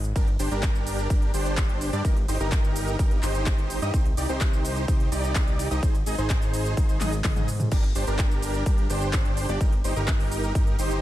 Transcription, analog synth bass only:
0.00 0.13 G#1 loud
0.16 0.37 G1 loud
0.39 0.49 G1 loud
0.51 1.08 G1 medium
1.10 1.31 G1 loud
1.34 1.91 G1 loud
1.93 2.02 G2 loud
2.05 2.26 G1 loud
2.28 2.38 G1 medium
2.40 2.97 G1 loud
2.99 3.21 G1 loud
3.23 3.80 G1 loud
3.82 3.91 G2 loud
3.94 4.15 C2 loud
4.17 4.27 C2 loud
4.29 4.86 C2 loud
4.88 5.09 C2 medium
5.12 5.69 C2 loud
5.71 5.80 C2 loud
5.83 6.04 G#1 loud
6.06 6.16 G#1 medium
6.18 6.75 G#1 loud
6.77 6.99 G#1 loud
7.01 7.22 G#1 loud
7.25 7.34 G#1 medium
7.36 7.69 G#2 loud
7.72 7.93 G1 loud
7.95 8.05 G1 loud
8.07 8.64 G1 loud
8.66 8.87 G1 loud
8.90 9.47 G1 loud
9.49 9.58 G1 loud
9.61 9.82 G1 loud
9.84 9.94 G1 loud
9.96 10.53 G1 loud
10.55 10.76 G1 medium
10.79 11.02 G1 loud

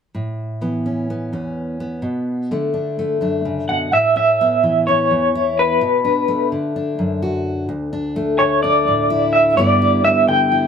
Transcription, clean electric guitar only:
3.69 3.93 F#5 medium
3.93 4.15 E5 medium
4.17 4.86 E5 medium
4.87 5.60 C#5 medium
5.59 6.48 B4 medium
8.39 8.61 C#5 medium
8.63 9.32 D5 medium
9.33 9.57 E5 medium
9.57 10.04 D5 medium
10.05 10.26 E5 medium
10.29 10.67 G5 medium

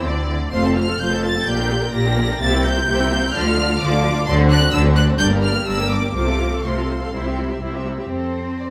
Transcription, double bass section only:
0.05 0.53 D2 medium
0.53 0.95 F1 medium
1.00 1.42 F1 medium
1.47 1.89 A#1 medium
1.94 2.36 A#1 medium
2.41 2.83 C2 medium
2.89 3.29 C2 medium
3.35 3.75 D2 medium
3.81 4.21 D2 loud
4.27 4.68 D2 loud
4.73 5.14 D2 loud
5.19 5.61 G1 medium
5.66 6.09 G1 medium
6.15 6.58 C2 medium
6.64 7.07 C2 medium
7.13 7.56 C2 medium
7.61 8.05 C2 medium
8.10 8.70 F2 medium

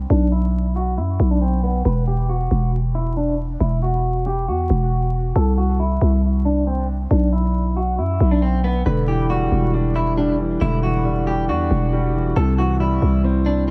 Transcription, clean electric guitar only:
0.10 0.27 D4 medium
0.32 0.73 E4 medium
0.76 0.93 F#4 medium
0.98 1.29 E4 medium
1.31 1.39 D4 medium
1.41 1.59 C4 medium
1.64 1.81 B3 loud
1.85 2.02 B4 loud
2.07 2.25 G4 medium
2.29 2.70 F#4 medium
2.95 3.12 E4 medium
3.17 3.34 D4 medium
3.61 3.78 E4 loud
3.82 4.24 F#4 medium
4.26 4.43 G4 medium
4.48 5.32 F#4 medium
5.36 5.53 A4 loud
5.58 5.75 F#4 medium
5.80 6.21 E4 medium
6.45 6.62 D4 medium
6.67 6.84 C4 medium
7.11 7.28 D4 loud
7.33 7.74 E4 medium
7.76 7.94 F#4 medium
7.98 8.29 E4 medium
8.31 8.40 D4 medium
8.42 8.59 C4 medium
8.64 8.81 B3 medium
8.86 9.03 B4 loud
9.08 9.25 G4 medium
9.30 9.71 F#4 medium
9.96 10.13 E4 medium
10.17 10.35 D4 medium
10.61 10.78 E4 loud
10.83 11.24 F#4 medium
11.27 11.44 G4 medium
11.49 12.33 F#4 medium
12.36 12.54 A4 loud
12.58 12.76 F#4 medium
12.80 13.21 E4 medium
13.46 13.63 D4 medium

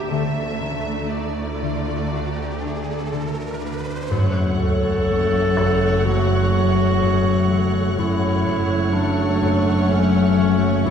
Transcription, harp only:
0.00 1.11 D4 soft
0.11 0.60 D3 soft
0.61 1.61 D3 soft
1.12 2.10 D4 soft
1.62 3.11 D3 soft
2.12 2.60 D4 soft
2.62 3.60 D4 soft
3.12 4.16 D3 soft
3.62 4.15 D4 soft
4.11 4.58 F#2 soft
4.59 5.56 F#2 soft
5.09 6.05 F#3 soft
5.58 7.01 F#2 soft
6.06 6.52 F#3 soft
6.53 7.50 F#3 soft
7.02 7.97 F#2 soft
7.51 8.93 F#3 soft
7.99 8.45 F#2 medium
8.47 9.41 F#2 soft
8.94 9.89 F#3 soft
9.43 10.85 F#2 soft
9.90 10.37 F#3 soft
10.38 10.90 F#3 soft
10.86 10.90 F#2 medium

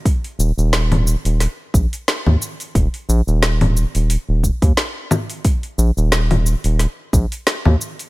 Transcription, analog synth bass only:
0.39 0.52 D#1 loud
0.58 1.16 D#1 loud
1.25 1.47 D#1 medium
1.74 1.87 A#1 medium
2.26 2.37 D#2 medium
2.75 2.88 D#1 loud
3.09 3.21 A#1 loud
3.27 3.85 D#1 loud
3.95 4.17 D#1 medium
4.29 4.50 D#1 medium
4.62 4.73 D#2 loud
5.78 5.91 A#1 loud
5.97 6.55 D#1 loud
6.64 6.86 D#1 medium
7.13 7.26 A#1 medium
7.66 7.76 D#2 medium

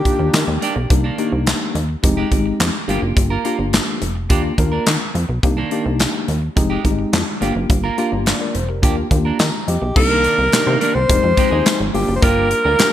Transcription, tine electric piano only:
0.05 0.46 A#3 medium
0.05 0.47 D4 medium
0.05 0.47 F4 medium
0.05 0.47 G4 medium
0.90 1.04 A#3 medium
0.90 1.04 D4 medium
0.90 1.04 D#4 medium
0.90 1.04 G4 medium
1.18 1.73 A#3 medium
1.18 1.73 D4 medium
1.18 1.74 D#4 medium
1.18 1.74 G4 medium
2.03 2.26 G#3 medium
2.03 2.26 C4 medium
2.03 2.26 D#4 medium
2.03 2.26 G4 loud
2.31 2.73 G#3 medium
2.31 2.73 C4 medium
2.31 2.73 D#4 medium
2.31 2.73 G4 medium
2.88 3.33 A#3 medium
2.88 3.34 D4 medium
2.88 3.34 F4 medium
2.88 3.34 G4 medium
3.45 4.00 A#3 medium
3.45 4.00 D4 medium
3.45 4.00 F4 medium
3.45 4.00 G4 medium
4.30 4.53 A#3 medium
4.30 4.53 D4 medium
4.30 4.53 F4 medium
4.30 4.53 G4 loud
4.58 4.99 A#3 medium
4.58 4.99 D4 medium
4.58 5.00 F4 medium
4.58 5.00 A#4 medium
5.43 5.57 A#3 medium
5.43 5.57 D4 medium
5.43 5.57 D#4 medium
5.43 5.57 G4 medium
5.71 6.26 A#3 medium
5.71 6.27 D4 medium
5.71 6.27 D#4 medium
5.71 6.27 G4 loud
6.56 6.79 G#3 medium
6.56 6.79 C4 medium
6.56 6.79 D#4 medium
6.56 6.79 G4 medium
6.85 6.91 G3 medium
6.85 7.26 C4 medium
6.85 7.26 D#4 medium
6.85 7.26 G4 medium
6.91 7.29 G#3 medium
7.41 7.87 A#3 medium
7.41 7.87 D4 medium
7.41 7.87 F4 medium
7.41 7.87 G4 medium
7.98 8.53 A#3 medium
7.98 8.53 D4 medium
7.98 8.53 F4 medium
7.98 8.27 G4 loud
8.26 8.39 D5 soft
8.26 8.40 F5 medium
8.41 8.54 A#4 medium
8.41 8.54 D5 medium
8.55 8.68 C5 medium
8.69 8.82 G4 medium
8.69 8.96 A#4 medium
8.83 9.05 A#3 medium
8.83 9.05 D4 medium
8.83 9.06 F4 medium
8.83 9.06 G4 loud
9.11 9.52 A#3 medium
9.11 9.52 D4 medium
9.11 9.52 F4 medium
9.11 9.53 G4 medium
9.40 9.66 A#5 medium
9.68 9.94 D#5 medium
9.96 10.23 A#3 medium
9.96 10.23 D4 medium
9.96 10.24 D#4 medium
9.96 10.24 G4 medium
10.52 10.94 A#3 medium
10.52 10.94 D4 medium
10.52 10.94 D#4 medium
10.52 10.94 G4 medium
11.09 11.32 G#3 medium
11.09 11.32 C4 medium
11.09 11.32 D#4 medium
11.09 11.32 G4 medium
11.37 11.79 G#3 medium
11.37 11.79 C4 medium
11.37 11.79 D#4 medium
11.37 11.79 G4 medium
11.94 12.62 A#3 medium
11.94 12.62 D4 medium
11.94 12.62 F4 medium
11.94 12.62 G4 medium
12.79 12.93 A#3 medium
12.79 12.93 D4 medium
12.79 12.93 F4 medium
12.79 12.93 G4 medium

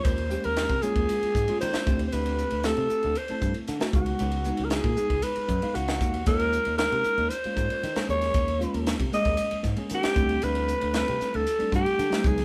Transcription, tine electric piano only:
0.00 0.17 G#3 medium
0.00 0.17 A#3 medium
0.00 0.17 C#4 medium
0.00 0.18 F4 medium
0.30 0.71 G#3 medium
0.30 0.71 A#3 medium
0.30 0.71 C#4 medium
0.30 0.72 G4 medium
0.83 1.34 G#3 medium
0.83 1.34 A#3 medium
0.83 1.34 C#4 medium
0.83 1.34 F4 medium
1.48 1.87 G#3 medium
1.48 1.87 A#3 medium
1.48 1.87 C#4 medium
1.48 1.87 F4 medium
1.86 2.49 A3 medium
1.86 2.49 C4 medium
1.86 2.49 E4 medium
1.86 2.50 G4 medium
2.65 3.15 A3 medium
2.65 3.16 C4 medium
2.65 3.16 E4 medium
2.65 3.16 G4 medium
3.29 3.70 A3 medium
3.29 3.70 C4 medium
3.29 3.70 E4 medium
3.29 3.70 A4 medium
3.79 3.93 A3 medium
3.79 3.94 C4 medium
3.79 3.94 E4 medium
3.79 3.94 F#4 medium
3.93 4.35 G#3 medium
3.93 4.36 B3 medium
3.93 4.36 D#4 medium
3.93 4.36 F#4 medium
4.46 4.86 G#3 medium
4.46 4.87 B3 medium
4.46 4.87 D#4 medium
4.46 4.87 F#4 medium
4.96 5.48 G#3 medium
4.96 5.48 B3 medium
4.96 5.49 D#4 medium
4.96 5.48 G#4 medium
5.62 6.13 G#3 medium
5.62 6.13 B3 medium
5.62 6.14 D#4 medium
5.62 6.14 F5 medium
6.26 6.68 G#3 medium
6.26 6.68 A#3 medium
6.26 6.68 C#4 medium
6.26 6.68 F4 medium
6.80 7.31 G#3 medium
6.80 7.31 A#3 medium
6.80 7.31 C#4 medium
6.80 7.31 D#4 medium
7.45 7.85 G#3 medium
7.45 7.85 A#3 medium
7.45 7.86 C#4 medium
7.45 7.86 F4 medium
7.97 8.47 G#3 medium
7.97 8.47 A#3 medium
7.97 8.48 C#4 medium
7.97 8.48 G#4 medium
8.59 9.01 G#3 medium
8.59 9.01 A#3 medium
8.59 9.02 C#4 medium
8.59 9.02 F4 medium
9.12 9.63 G#3 medium
9.12 9.63 A#3 medium
9.12 9.64 C#4 medium
9.12 9.64 G#4 medium
9.76 10.16 G#3 medium
9.76 10.16 A#3 medium
9.76 10.17 C#4 medium
9.76 10.17 G#4 medium
10.14 10.78 G3 medium
10.14 10.78 A3 medium
10.14 10.79 C4 medium
10.14 10.79 E4 medium
10.93 11.45 G3 medium
10.93 11.45 A3 medium
10.93 11.45 C4 medium
10.93 11.46 E4 medium
11.58 11.99 G3 medium
11.58 12.00 A3 medium
11.58 12.00 C4 medium
11.58 12.01 D4 medium
12.10 12.24 G3 medium
12.10 12.24 A3 medium
12.10 12.24 C4 medium
12.10 12.25 E4 medium
12.24 12.45 F#3 medium
12.24 12.45 G#3 medium
12.24 12.45 B3 medium
12.24 12.45 D#4 medium

